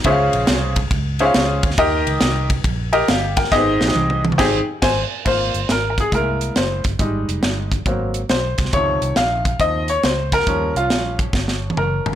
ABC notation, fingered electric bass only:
X:1
M:4/4
L:1/8
Q:"Swing" 1/4=138
K:Ab
V:1 name="Fingered electric bass" clef=bass
D,, B,,, C,,2 D,,2 D,, =D,, | E,, D,, C,,2 B,,,2 G,,,2 | A,,, B,,, C,,2 A,,, z A,,, z | A,,, G,,, A,,,2 C,,2 _G,,, =G,,, |
A,,, F,,, G,,,2 A,,,2 _C,, =C,, | D,, C,, B,,,2 E,,2 D,,2 | E,, C,, B,,,2 G,,,2 _G,,, =G,,, |]